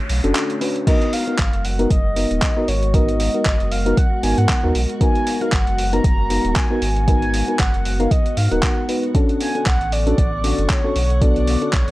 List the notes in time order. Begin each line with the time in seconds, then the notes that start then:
Already playing: D3 A3 C#5, noise sweep
0.09 B1, open hi-hat
0.24 F#1 C#4 D4 F#4 A4, closed hi-hat
0.35 clap, closed hi-hat
0.50 closed hi-hat
0.61 C#4 D4 F#4 B4, open hi-hat
0.76 closed hi-hat
0.87 G#3 B3 D#4 F#4 A#4 D#5, kick, closed hi-hat, crash
1.02 closed hi-hat
1.13 F5, open hi-hat
1.27 B3 D#4 F#4 A#4, closed hi-hat
1.39 G#1, kick, clap, closed hi-hat
1.53 F#1, closed hi-hat
1.65 F#5, open hi-hat
1.79 B3 D#4 F#4 A#4, closed hi-hat
1.91 F#1 D#5, kick, closed hi-hat
2.16 B3 D#4 F#4 A#4, open hi-hat
2.31 D#1, closed hi-hat
2.42 kick, clap, closed hi-hat
2.57 B3 D#4 F#4 A#4
2.68 G#1 C#5, open hi-hat
2.83 closed hi-hat
2.94 B3 D#4 F#4 A#4 D#5, kick, closed hi-hat
3.09 closed hi-hat
3.20 open hi-hat
3.34 B3 D#4 F#4 A#4, closed hi-hat
3.46 G#1, kick, clap, closed hi-hat
3.60 F#1, closed hi-hat
3.72 F5, open hi-hat
3.86 B3 D#4 F#4 A#4, closed hi-hat
3.97 F#5, kick, closed hi-hat
4.23 G#1 B3 D#4 F#4 A#4 G#5, open hi-hat
4.38 G#2 F#5, closed hi-hat
4.49 kick, clap, closed hi-hat
4.64 D#2 B3 D#4 F#4 A#4
4.75 B1, open hi-hat
4.90 closed hi-hat
5.01 B3 D#4 F#4 A#4 G#5, kick, closed hi-hat
5.15 closed hi-hat
5.27 open hi-hat
5.41 B3 D#4 F#4 A#4 F5, closed hi-hat
5.52 G#1 F#5, kick, clap, closed hi-hat
5.67 F#1, closed hi-hat
5.78 open hi-hat
5.93 B3 D#4 F#4 A#4 A#5, closed hi-hat
6.04 F#1 A#5, kick, closed hi-hat
6.30 B3 D#4 F#4 A#4, open hi-hat
6.45 D#1, closed hi-hat
6.56 G#5, kick, clap, closed hi-hat
6.71 B3 D#4 F#4 A#4
6.82 G#1, open hi-hat
6.96 closed hi-hat
7.08 B3 D#4 F#4 A#4 G#5, kick, closed hi-hat
7.22 closed hi-hat
7.34 open hi-hat
7.48 B3 D#4 F#4 A#4, closed hi-hat
7.59 G#1 F#5, kick, clap, closed hi-hat
7.74 F#1, closed hi-hat
7.85 open hi-hat
8.00 B3 D#4 F#4 A#4 F5, closed hi-hat
8.11 D#5, kick, closed hi-hat
8.26 closed hi-hat
8.37 G#2 F5, open hi-hat
8.52 D#1 B3 D#4 F#4 A#4 F#5, closed hi-hat
8.63 kick, clap, closed hi-hat
8.89 B3 D#4 F#4 B4, open hi-hat
9.03 closed hi-hat
9.15 D3 C#4 D4 F#4 A4 F#5 C#6, kick, closed hi-hat
9.29 closed hi-hat
9.41 G#5, open hi-hat
9.55 C#4 D4 F#4 A4, closed hi-hat
9.66 B1 F#5, kick, clap, closed hi-hat
9.81 A1, closed hi-hat
9.92 D5, open hi-hat
10.07 C#4 D4 F#4 A4, closed hi-hat
10.18 A1, kick, closed hi-hat
10.44 C#4 D4 F#4 A4, open hi-hat
10.58 F#1, closed hi-hat
10.70 C#5, kick, clap, closed hi-hat
10.84 C#4 D4 F#4 A4
10.96 B1, open hi-hat
11.10 closed hi-hat
11.22 B3 D4 F#4 A4 D5, kick, closed hi-hat
11.36 closed hi-hat
11.47 open hi-hat
11.62 C#4 D4 F#4 A4, closed hi-hat
11.73 B1 C#5, kick, clap, closed hi-hat
11.88 A1, closed hi-hat